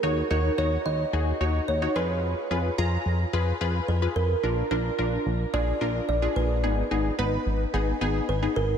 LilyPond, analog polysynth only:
\new Staff \with { instrumentName = "Analog polysynth" } { \time 4/4 \key ees \minor \tempo 4 = 109 <ees' ges' des''>8 <ees' ges' des''>8 <ees' ges' des''>8. r16 <ees' ges' aes'>8 <ees' ges' des''>8 r16 <ees' ges' des''>16 <f' aes' ces''>8~ | <f' aes' ces''>16 r16 <f' aes' ces''>8 <f' aes' bes''>8. r16 <f' aes' ces''>8 <f' aes' ces''>8 r16 <f' aes' ces''>8 r16 | <d' f' bes'>8 <d' f' bes'>8 <d' f' bes'>8. r16 <d' f' aes'>8 <d' f' bes'>8 r16 <d' f' aes'>8 r16 | <ces' ees' aes'>8 <ces' ees' aes'>8 <ces' ees' ces''>8. r16 <ces' ees' aes'>8 <ces' ees' aes'>8 r16 <ces' ees' aes'>8 r16 | }